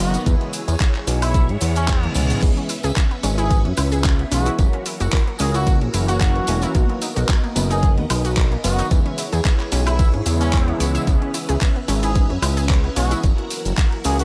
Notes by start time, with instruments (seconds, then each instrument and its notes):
Already playing: string machine B3 A#4 D#5
0.00 analog synth bass F#1, analog synth pad D#3 F#3 A#3 B3 F#4, trumpet section F#4, tambourine
0.14 closed hi-hat, tambourine, shaker
0.26 analog synth bass E2, analog synth pad C#3 E3 G#3 B3 E4, string machine E4 G#4 C#5, kick, closed hi-hat, tambourine, shaker
0.41 closed hi-hat
0.53 open hi-hat, tambourine, shaker
0.68 analog synth bass E2, closed hi-hat, tambourine, shaker
0.80 kick, clap, closed hi-hat, tambourine, shaker
0.95 clap, closed hi-hat
1.07 analog synth bass B1, open hi-hat, tambourine, shaker
1.22 trumpet section E4, open hi-hat, tambourine, high woodblock, shaker
1.34 kick, closed hi-hat, tambourine, reverse cymbal, shaker
1.49 analog synth bass G#2, closed hi-hat
1.61 analog synth bass E2, open hi-hat, tambourine, shaker
1.75 trumpet section C#4, closed hi-hat, tambourine, shaker
1.88 kick, clap, closed hi-hat, tambourine, shaker
2.03 analog synth pad C#3 E3 G#3 B3 E4, closed hi-hat, high tom
2.14 analog synth bass C#2, analog synth pad C#3 E3 G#3 B3 C#4, open hi-hat, mid tom, tambourine, shaker
2.30 closed hi-hat, mid tom, tambourine, shaker
2.42 analog synth bass C#2, analog synth pad E3 G#3 B3 C#4 G#4, synth arpeggio sound B3, string machine C#4 B4 E5, kick, closed hi-hat, tambourine, crash, shaker
2.57 synth arpeggio sound C#4, closed hi-hat
2.69 synth arpeggio sound E4, open hi-hat, tambourine, shaker
2.83 analog synth bass C#2, synth arpeggio sound G#4, closed hi-hat, tambourine, shaker
2.96 synth arpeggio sound B4, kick, clap, closed hi-hat, shaker
3.11 synth arpeggio sound B3, closed hi-hat
3.23 analog synth bass G#1, synth arpeggio sound C#4, open hi-hat, tambourine, shaker
3.38 synth arpeggio sound E4, trumpet section G#4, closed hi-hat, tambourine, shaker
3.50 synth arpeggio sound B3, kick, closed hi-hat, tambourine, shaker
3.65 analog synth bass F#2, synth arpeggio sound C#4, closed hi-hat
3.77 analog synth bass C#2, synth arpeggio sound E4, open hi-hat, tambourine, high woodblock, shaker
3.92 synth arpeggio sound G#4, closed hi-hat, tambourine, shaker
4.04 synth arpeggio sound B4, kick, clap, closed hi-hat, shaker
4.19 synth arpeggio sound B3, closed hi-hat
4.31 analog synth bass B1, analog synth pad E3 G#3 B3 C#4 G#4, synth arpeggio sound C#4, trumpet section F#4, open hi-hat, tambourine, shaker
4.45 synth arpeggio sound E4, closed hi-hat, tambourine, shaker
4.58 analog synth bass F#1, analog synth pad E3 F#3 A#3 C#4 F#4, synth arpeggio sound A#3, string machine E4 F#4 A#4, kick, closed hi-hat, tambourine, shaker
4.73 synth arpeggio sound C#4, closed hi-hat
4.86 synth arpeggio sound E4, open hi-hat, tambourine, shaker
5.00 analog synth bass F#1, synth arpeggio sound F#4, closed hi-hat, tambourine, shaker
5.12 synth arpeggio sound A#4, kick, clap, closed hi-hat, tambourine, shaker
5.27 synth arpeggio sound A#3, closed hi-hat
5.39 analog synth bass C#2, synth arpeggio sound C#4, trumpet section G#4, open hi-hat, tambourine, shaker
5.54 synth arpeggio sound E4, trumpet section F#4, closed hi-hat, tambourine, shaker
5.66 synth arpeggio sound A#3, kick, closed hi-hat, tambourine, shaker
5.81 analog synth bass A#1, synth arpeggio sound C#4, closed hi-hat
5.93 analog synth bass F#1, analog synth pad E3 F#3 A#3 C#4 F#4, synth arpeggio sound E4, open hi-hat, tambourine, shaker
6.08 trumpet section F#4, synth arpeggio sound F#4, closed hi-hat, tambourine, shaker
6.21 synth arpeggio sound A#4, kick, clap, closed hi-hat, tambourine, shaker
6.35 analog synth pad E3 F#3 A#3 C#4 F#4, synth arpeggio sound A#3, closed hi-hat
6.47 analog synth bass E1, synth arpeggio sound C#4, open hi-hat, tambourine, shaker
6.62 synth arpeggio sound E4, closed hi-hat, tambourine, shaker
6.74 analog synth bass B1, analog synth pad D#3 F#3 A#3 B3 F#4, synth arpeggio sound A#3, string machine B3 A#4 D#5, kick, closed hi-hat, tambourine, shaker
6.89 synth arpeggio sound B3, closed hi-hat
7.02 synth arpeggio sound D#4, open hi-hat, tambourine, shaker
7.16 analog synth bass B1, synth arpeggio sound F#4, closed hi-hat, tambourine, shaker
7.29 synth arpeggio sound A#4, kick, clap, closed hi-hat, tambourine, shaker
7.43 synth arpeggio sound A#3, closed hi-hat
7.56 analog synth bass F#1, synth arpeggio sound B3, open hi-hat, tambourine, shaker
7.70 synth arpeggio sound D#4, trumpet section G#4, closed hi-hat, tambourine, shaker
7.82 synth arpeggio sound A#3, kick, closed hi-hat, tambourine, shaker
7.98 analog synth bass D#2, synth arpeggio sound B3, closed hi-hat
8.10 analog synth bass B1, synth arpeggio sound D#4, open hi-hat, tambourine, high woodblock, shaker
8.25 synth arpeggio sound F#4, closed hi-hat, tambourine, shaker
8.37 synth arpeggio sound A#4, kick, clap, closed hi-hat, tambourine, shaker
8.52 synth arpeggio sound A#3, closed hi-hat
8.63 analog synth bass F#1, analog synth pad D#3 F#3 A#3 B3 F#4, synth arpeggio sound B3, trumpet section F#4, open hi-hat, tambourine, shaker
8.79 synth arpeggio sound D#4, closed hi-hat, tambourine, shaker
8.90 analog synth bass E2, analog synth pad C#3 E3 G#3 B3 E4, synth arpeggio sound B3, string machine E4 G#4 C#5, kick, closed hi-hat, tambourine, shaker
9.06 synth arpeggio sound C#4, closed hi-hat
9.18 synth arpeggio sound E4, open hi-hat, tambourine, shaker
9.33 analog synth bass E2, synth arpeggio sound G#4, closed hi-hat, tambourine, shaker
9.45 synth arpeggio sound B4, kick, clap, closed hi-hat, tambourine, shaker
9.60 synth arpeggio sound B3, clap, closed hi-hat
9.72 analog synth bass B1, synth arpeggio sound C#4, open hi-hat, tambourine, shaker
9.87 synth arpeggio sound E4, trumpet section E4, closed hi-hat, tambourine, high woodblock, shaker
9.99 synth arpeggio sound B3, kick, closed hi-hat, tambourine, shaker
10.14 analog synth bass G#2, synth arpeggio sound C#4, closed hi-hat
10.25 analog synth bass E2, analog synth pad C#3 E3 G#3 B3 E4, synth arpeggio sound E4, open hi-hat, tambourine, shaker
10.41 synth arpeggio sound B3, trumpet section C#4, closed hi-hat, tambourine, shaker
10.53 synth arpeggio sound E4, kick, clap, closed hi-hat, tambourine, shaker
10.67 analog synth pad C#3 E3 G#3 B3 E4, synth arpeggio sound C#5, closed hi-hat
10.80 analog synth bass C#2, synth arpeggio sound C#5, open hi-hat, tambourine, shaker
10.95 synth arpeggio sound E5, closed hi-hat, tambourine, shaker
11.07 analog synth bass C#2, analog synth pad E3 G#3 B3 C#4 G#4, synth arpeggio sound B3, string machine C#4 B4 E5, kick, closed hi-hat, tambourine, shaker
11.22 synth arpeggio sound C#4, closed hi-hat
11.34 synth arpeggio sound E4, open hi-hat, tambourine, shaker
11.49 analog synth bass C#2, synth arpeggio sound G#4, closed hi-hat, tambourine, shaker
11.61 synth arpeggio sound B4, kick, clap, closed hi-hat, tambourine, shaker
11.76 synth arpeggio sound B3, closed hi-hat
11.88 analog synth bass G#1, synth arpeggio sound C#4, open hi-hat, tambourine, shaker
12.03 synth arpeggio sound E4, trumpet section G#4, closed hi-hat, tambourine, shaker
12.15 synth arpeggio sound B3, kick, closed hi-hat, tambourine, shaker
12.30 analog synth bass F#2, synth arpeggio sound C#4, closed hi-hat
12.42 analog synth bass C#2, synth arpeggio sound E4, open hi-hat, tambourine, high woodblock, shaker
12.57 synth arpeggio sound G#4, closed hi-hat, tambourine, shaker
12.69 synth arpeggio sound B4, kick, clap, closed hi-hat, tambourine, shaker
12.84 synth arpeggio sound B3, closed hi-hat
12.96 analog synth bass B1, analog synth pad E3 G#3 B3 C#4 G#4, synth arpeggio sound C#4, trumpet section F#4, open hi-hat, tambourine, shaker
13.11 synth arpeggio sound E4, closed hi-hat, tambourine, shaker
13.23 analog synth bass F#1, string machine E4 F#4 A#4, kick, closed hi-hat, tambourine, shaker
13.38 closed hi-hat
13.50 open hi-hat, tambourine, shaker
13.65 analog synth bass F#1, closed hi-hat, tambourine, shaker
13.78 kick, clap, closed hi-hat, tambourine, shaker
13.92 closed hi-hat
14.04 analog synth bass C#2, trumpet section G#4, open hi-hat, tambourine, shaker
14.19 trumpet section F#4, closed hi-hat, tambourine, shaker